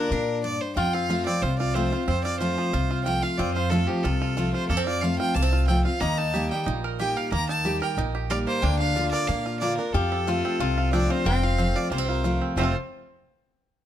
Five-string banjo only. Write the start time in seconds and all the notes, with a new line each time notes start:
0.77 F4
0.94 C4
1.10 F4
1.27 C4
1.43 F4
1.60 F4
1.75 C4
1.92 F4
2.08 C4
2.25 F4
2.41 F4
2.58 F3
2.73 F4
2.91 F4
3.06 F4
3.23 F4
3.39 C4
3.56 F4
3.72 F4
3.89 F3
4.04 F4
4.21 F4
4.37 F4
4.54 F4
4.70 A#3
4.77 C4
4.87 F4
5.03 F4
5.20 F4
5.36 A#3
5.42 C4
5.53 F4
5.68 C4
5.85 F4
6.01 A#3
6.18 D#4
6.34 G4
6.51 G3
6.66 D#4
6.84 A#4
7.00 G4
7.17 A#4
7.32 A#3
7.49 D#4
7.65 G4
7.82 A#4
7.98 D#4
8.15 G4
8.31 A#4
8.47 A#3
8.63 A#3
8.80 D4
8.96 F4
9.13 A#4
9.29 A#3
9.46 F4
9.62 A#3
9.79 D4
9.94 F4
10.12 C4
10.27 F4
10.45 C4
10.60 F4
10.78 F4
10.93 C4
11.10 F4
11.26 F4
11.43 F4
11.58 C4
11.76 F4
11.91 A#3
11.98 C4
12.09 F4
12.24 F4
12.42 C4
12.58 A3 C4 F4
12.64 A4